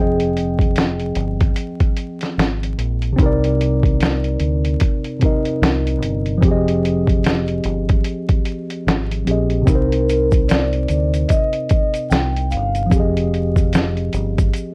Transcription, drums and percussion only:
0.20 closed hi-hat soft
0.37 closed hi-hat medium
0.59 kick medium
0.59 closed hi-hat soft
0.76 snare loud
0.76 closed hi-hat medium
1.00 closed hi-hat soft
1.16 closed hi-hat medium
1.41 kick medium
1.41 closed hi-hat soft
1.56 closed hi-hat medium
1.80 kick medium
1.80 closed hi-hat soft
1.97 closed hi-hat medium
2.21 snare soft
2.21 closed hi-hat soft
2.39 snare loud
2.39 closed hi-hat medium
2.63 closed hi-hat soft
2.79 closed hi-hat medium
3.02 closed hi-hat soft
3.18 kick loud
3.18 closed hi-hat medium
3.44 closed hi-hat medium
3.61 closed hi-hat medium
3.83 kick medium
3.83 closed hi-hat soft
4.00 snare loud
4.00 closed hi-hat medium
4.24 closed hi-hat soft
4.40 closed hi-hat medium
4.65 closed hi-hat soft
4.80 kick medium
4.80 closed hi-hat medium
5.04 closed hi-hat soft
5.21 kick medium
5.21 closed hi-hat medium
5.45 closed hi-hat soft
5.63 snare loud
5.63 closed hi-hat medium
5.87 closed hi-hat soft
6.03 closed hi-hat medium
6.26 closed hi-hat soft
6.43 kick loud
6.43 closed hi-hat medium
6.68 closed hi-hat medium
6.85 closed hi-hat medium
7.07 kick medium
7.07 closed hi-hat soft
7.24 snare loud
7.24 closed hi-hat medium
7.48 closed hi-hat soft
7.64 closed hi-hat medium
7.89 kick medium
7.89 closed hi-hat soft
8.04 closed hi-hat medium
8.29 kick medium
8.29 closed hi-hat soft
8.45 closed hi-hat medium
8.70 closed hi-hat medium
8.88 snare loud
8.88 closed hi-hat medium
9.11 closed hi-hat soft
9.27 closed hi-hat medium
9.50 closed hi-hat soft
9.67 kick loud
9.67 closed hi-hat medium
9.67 shaker medium
9.92 closed hi-hat medium
10.09 closed hi-hat medium
10.09 shaker soft
10.31 kick medium
10.31 closed hi-hat soft
10.31 shaker soft
10.49 snare loud
10.49 closed hi-hat medium
10.49 shaker medium
10.72 closed hi-hat soft
10.88 closed hi-hat medium
10.88 shaker soft
11.13 closed hi-hat soft
11.13 shaker soft
11.29 kick medium
11.29 closed hi-hat medium
11.29 shaker medium
11.53 closed hi-hat soft
11.70 kick medium
11.70 closed hi-hat medium
11.70 shaker soft
11.94 closed hi-hat medium
11.94 shaker soft
12.11 snare loud
12.11 closed hi-hat medium
12.11 shaker medium
12.36 closed hi-hat soft
12.51 closed hi-hat medium
12.51 shaker soft
12.75 closed hi-hat soft
12.75 shaker soft
12.91 kick loud
12.91 closed hi-hat medium
12.91 shaker medium
13.17 closed hi-hat medium
13.34 closed hi-hat medium
13.34 shaker soft
13.56 kick medium
13.56 closed hi-hat soft
13.56 shaker soft
13.73 snare loud
13.73 closed hi-hat medium
13.73 shaker medium
13.97 closed hi-hat soft
14.13 closed hi-hat medium
14.13 shaker medium
14.38 kick medium
14.38 closed hi-hat soft
14.38 shaker medium
14.53 closed hi-hat medium
14.53 shaker medium

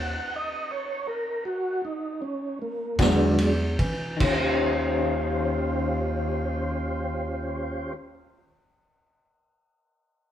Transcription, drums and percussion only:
2.99 kick medium
2.99 snare loud
2.99 ride medium
3.38 ride medium
3.79 kick medium
3.79 ride medium
4.20 kick loud
4.20 crash medium

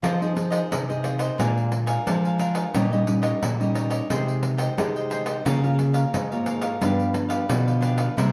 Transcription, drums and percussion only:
0.04 pandeiro medium
0.22 pandeiro soft
0.37 pandeiro medium
0.52 pandeiro medium
0.72 pandeiro medium
0.90 pandeiro soft
1.04 pandeiro medium
1.19 pandeiro medium
1.40 pandeiro medium
1.57 pandeiro soft
1.72 pandeiro medium
1.87 pandeiro medium
2.07 pandeiro medium
2.25 pandeiro soft
2.39 pandeiro medium
2.55 pandeiro medium
2.74 pandeiro medium
2.93 pandeiro soft
3.07 pandeiro medium
3.23 pandeiro medium
3.43 pandeiro medium
3.61 pandeiro soft
3.75 pandeiro medium
3.91 pandeiro medium
4.10 pandeiro medium
4.28 pandeiro soft
4.43 pandeiro medium
4.58 pandeiro medium
4.78 pandeiro medium
4.96 pandeiro soft
5.11 pandeiro medium
5.26 pandeiro medium
5.46 pandeiro medium
5.64 pandeiro soft
5.79 pandeiro medium
5.94 pandeiro medium
6.14 pandeiro medium
6.32 pandeiro soft
6.46 pandeiro medium
6.62 pandeiro medium
6.82 pandeiro medium
6.99 pandeiro soft
7.14 pandeiro medium
7.30 pandeiro medium
7.49 pandeiro medium
7.68 pandeiro soft
7.82 pandeiro medium
7.98 pandeiro medium
8.18 pandeiro medium

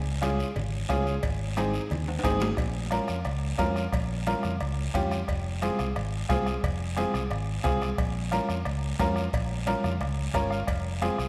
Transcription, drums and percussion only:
0.22 bombo rim medium
0.22 cowbell medium
0.22 high conga medium
0.22 short guiro medium
0.40 short guiro medium
0.56 cowbell medium
0.56 high conga soft
0.56 low conga medium
0.56 long guiro medium
0.89 bombo low medium
0.89 bombo rim medium
0.89 cowbell medium
0.89 high conga medium
0.89 low timbale medium
0.89 short guiro medium
1.07 short guiro medium
1.23 bombo low medium
1.23 cowbell loud
1.23 high conga soft
1.23 long guiro medium
1.56 bombo rim medium
1.56 cowbell medium
1.56 high conga medium
1.56 short guiro medium
1.74 short guiro medium
1.90 cowbell medium
1.90 high conga soft
1.90 low conga medium
1.90 long guiro medium
2.08 high timbale medium
2.19 high timbale medium
2.23 bombo low medium
2.23 bombo rim medium
2.23 cowbell medium
2.23 high conga medium
2.23 short guiro medium
2.30 low timbale medium
2.40 low timbale medium
2.40 short guiro medium
2.57 bombo low medium
2.57 bombo rim medium
2.57 cowbell loud
2.57 high conga soft
2.57 long guiro medium
2.91 bombo rim medium
2.91 cowbell medium
2.91 high conga medium
2.91 short guiro medium
3.08 bombo rim medium
3.08 short guiro medium
3.25 bombo rim medium
3.25 cowbell medium
3.25 high conga soft
3.25 long guiro medium
3.59 bombo low medium
3.59 bombo rim medium
3.59 cowbell medium
3.59 high conga medium
3.59 low timbale medium
3.59 short guiro medium
3.76 bombo rim medium
3.76 short guiro medium
3.92 bombo low medium
3.92 bombo rim medium
3.92 cowbell loud
3.92 high conga soft
3.92 long guiro medium
4.27 bombo rim medium
4.27 cowbell medium
4.27 high conga medium
4.27 short guiro medium
4.43 bombo rim medium
4.43 low conga medium
4.43 short guiro medium
4.60 bombo rim medium
4.60 cowbell medium
4.60 high conga soft
4.60 long guiro medium
4.95 bombo low medium
4.95 bombo rim medium
4.95 cowbell medium
4.95 high conga medium
4.95 low conga medium
4.95 short guiro medium
5.11 bombo rim medium
5.11 short guiro medium
5.28 bombo low medium
5.28 bombo rim medium
5.28 cowbell loud
5.28 high conga soft
5.28 long guiro medium
5.62 bombo rim medium
5.62 cowbell medium
5.62 high conga medium
5.62 short guiro medium
5.79 bombo rim medium
5.79 short guiro medium
5.96 bombo rim medium
5.96 cowbell medium
5.96 high conga soft
5.96 long guiro medium
6.29 bombo low medium
6.29 bombo rim medium
6.29 cowbell medium
6.29 high conga medium
6.29 low timbale medium
6.29 short guiro medium
6.46 bombo rim medium
6.46 short guiro medium
6.63 bombo low medium
6.63 bombo rim medium
6.63 cowbell loud
6.63 high conga soft
6.63 long guiro medium
6.97 bombo rim medium
6.97 cowbell medium
6.97 high conga medium
6.97 short guiro medium
7.14 bombo rim medium
7.14 short guiro medium
7.31 bombo rim medium
7.31 cowbell medium
7.31 high conga soft
7.31 long guiro medium
7.64 bombo low medium
7.64 bombo rim medium
7.64 cowbell medium
7.64 high conga medium
7.64 low conga medium
7.64 short guiro medium
7.82 bombo rim medium
7.82 short guiro medium
7.98 bombo low medium
7.98 bombo rim medium
7.98 cowbell loud
7.98 long guiro medium
8.32 bombo rim medium
8.32 cowbell medium
8.32 high conga medium
8.32 short guiro medium
8.49 bombo rim medium
8.49 short guiro medium
8.65 bombo rim medium
8.65 cowbell medium
8.65 high conga soft
8.65 long guiro medium
8.99 bombo low medium
8.99 bombo rim medium
8.99 cowbell medium
8.99 high conga medium
8.99 low timbale medium
8.99 short guiro medium
9.16 bombo rim medium
9.16 short guiro medium
9.33 bombo low medium
9.33 bombo rim medium
9.33 cowbell loud
9.33 high conga soft
9.33 long guiro medium
9.67 bombo rim medium
9.67 cowbell medium
9.67 high conga medium
9.67 short guiro medium
9.84 bombo rim medium
9.84 low conga medium
9.84 short guiro medium
10.00 bombo rim medium
10.00 cowbell medium
10.00 high conga soft
10.00 long guiro medium
10.34 bombo low medium
10.34 bombo rim medium
10.34 cowbell medium
10.34 high conga medium
10.34 low conga medium
10.34 short guiro medium
10.51 bombo rim medium
10.51 short guiro medium
10.67 bombo low medium
10.67 bombo rim medium
10.67 cowbell loud
10.67 high conga soft
10.67 long guiro medium
11.02 bombo rim medium
11.02 cowbell medium
11.02 high conga medium
11.02 short guiro medium
11.18 bombo rim medium
11.18 short guiro medium

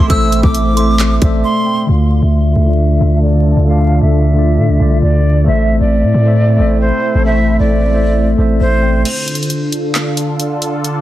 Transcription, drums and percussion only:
0.10 kick loud
0.10 closed hi-hat medium
0.32 closed hi-hat medium
0.43 kick loud
0.54 closed hi-hat medium
0.77 closed hi-hat medium
0.99 clap loud
0.99 closed hi-hat medium
1.22 kick loud
1.22 closed hi-hat medium
9.05 closed hi-hat medium
9.05 crash medium
9.28 closed hi-hat medium
9.35 closed hi-hat medium
9.43 closed hi-hat soft
9.50 closed hi-hat medium
9.72 closed hi-hat medium
9.95 clap loud
9.95 closed hi-hat medium
10.17 closed hi-hat medium
10.40 closed hi-hat medium
10.62 closed hi-hat medium
10.84 closed hi-hat medium

